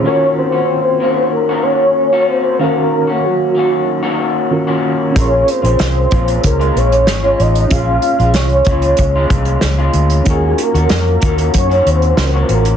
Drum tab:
HH |----------------|----------------|x-xxx-xxxxxxx-xx|x-xxxxxxx-xxx-xx|
SD |----------------|----------------|----o-------o---|----o-------o---|
BD |----------------|----------------|o-----o-o-------|o-----o-o-o-----|

HH |x-xxx-xxxxxxx-xx|
SD |----o-------o---|
BD |o-----o-o-------|